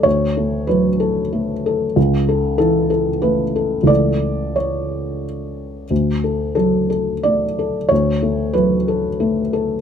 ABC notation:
X:1
M:3/4
L:1/8
Q:1/4=92
K:D
V:1 name="Felt piano"
c2 B4 | z2 A2 B2 | d2 c2 z2 | z2 A2 d2 |
c2 B4 |]
V:2 name="Felt piano"
[D,,A] A, F, A A, A | C,, A E, A A, A | [C,,E,A,A]6 | D,, A F, A A, A |
D,, A, F, A A, A |]